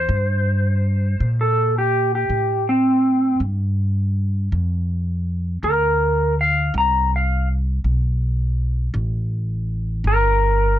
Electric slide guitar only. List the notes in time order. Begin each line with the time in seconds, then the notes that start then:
Already playing: C5
1.41 A4
1.78 G4
2.15 G4
2.69 C4
5.64 A#4
6.41 F5
6.78 A#5
7.16 F5
10.07 A#4